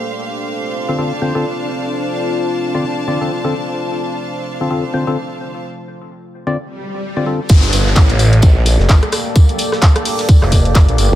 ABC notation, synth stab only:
X:1
M:4/4
L:1/16
Q:"Swing 16ths" 1/4=129
K:Gm
V:1 name="Synth stab"
z6 z [D,CFA] [D,CFA] z [D,CFc] [D,CFA] z4 | z6 z [D,CFd] z2 [D,CFd] [D,CFA] z [D,CFA] z2 | z6 z [D,CFA] [D,CFA] z [D,CFc] [D,CFA] z4 | z6 z [D,CFd] z4 z [D,CFd] [D,CFA] z |
z16 | z16 |]